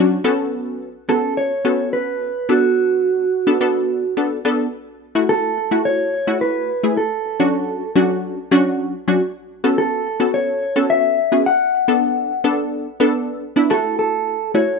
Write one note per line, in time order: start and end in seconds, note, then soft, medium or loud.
0.00 0.18 F#3 loud
0.00 0.18 C#4 loud
0.00 0.18 D4 medium
0.00 0.18 F#4 loud
0.24 0.89 B3 loud
0.24 0.89 C#4 medium
0.24 0.89 F#4 medium
0.24 0.89 A4 loud
1.09 1.52 B3 medium
1.09 1.52 C#4 medium
1.09 1.52 F#4 medium
1.09 1.52 A4 medium
1.09 1.37 A4 medium
1.37 1.89 C#5 loud
1.65 2.29 B3 medium
1.65 2.29 C#4 medium
1.65 2.30 F#4 medium
1.65 2.30 A4 medium
1.93 2.51 B4 loud
2.49 3.24 B3 medium
2.49 3.24 D4 medium
2.49 4.13 F#4 medium
2.49 3.25 A4 medium
3.47 3.58 B3 medium
3.47 3.58 D4 medium
3.47 3.58 A4 loud
3.61 4.04 B3 loud
3.61 4.04 D4 medium
3.61 4.04 A4 loud
4.17 4.39 B3 medium
4.17 4.39 D4 medium
4.17 4.39 A4 medium
4.45 4.67 B3 loud
4.45 4.67 D4 medium
4.45 4.67 A4 loud
5.15 5.58 A3 medium
5.15 5.58 E4 medium
5.15 5.59 F#4 medium
5.29 5.85 A4 loud
5.71 6.14 A3 medium
5.71 6.15 E4 medium
5.71 6.15 F#4 medium
5.85 6.41 C#5 loud
6.27 6.70 A3 medium
6.27 6.71 E4 medium
6.27 6.71 F#4 medium
6.41 6.94 B4 loud
6.83 6.97 A3 medium
6.83 6.98 E4 medium
6.83 6.98 G#4 medium
6.97 8.06 A4 medium
7.40 7.83 F#3 medium
7.40 7.83 C#4 medium
7.40 7.83 D4 medium
7.40 7.83 F#4 loud
7.95 8.39 F#3 loud
7.95 8.39 C#4 medium
7.95 8.39 D4 medium
7.95 8.39 F#4 loud
8.51 8.95 F#3 loud
8.51 8.95 C#4 loud
8.51 8.95 D4 medium
8.51 8.95 F#4 loud
9.08 9.22 F#3 medium
9.08 9.22 C#4 medium
9.08 9.22 D4 medium
9.08 9.22 F#4 medium
9.64 10.07 B3 medium
9.64 10.07 C#4 medium
9.64 10.07 F#4 medium
9.64 10.07 A4 medium
9.78 10.30 A4 medium
10.20 10.63 B3 medium
10.20 10.63 C#4 medium
10.20 10.63 F#4 medium
10.20 10.63 A4 medium
10.34 10.86 C#5 medium
10.76 11.19 B3 medium
10.76 11.19 C#4 medium
10.76 11.19 F#4 medium
10.76 11.19 A4 medium
10.90 11.42 E5 loud
11.32 11.46 B3 medium
11.32 11.46 C#4 medium
11.32 11.46 F#4 medium
11.32 11.46 G#4 medium
11.46 12.54 F#5 loud
11.88 12.31 B3 medium
11.88 12.31 D4 medium
11.88 12.31 A4 loud
12.44 12.87 B3 medium
12.44 12.87 D4 medium
12.44 12.87 A4 loud
13.00 13.43 B3 loud
13.00 13.43 D4 medium
13.00 13.44 A4 loud
13.56 13.70 B3 medium
13.56 13.70 D4 medium
13.56 13.69 E4 loud
13.70 14.35 A3 medium
13.70 14.35 E4 medium
13.70 14.35 F#4 medium
13.70 13.98 A4 loud
13.99 14.54 A4 loud
14.54 14.79 A3 medium
14.54 14.79 E4 medium
14.54 14.79 F#4 medium
14.54 14.79 C#5 loud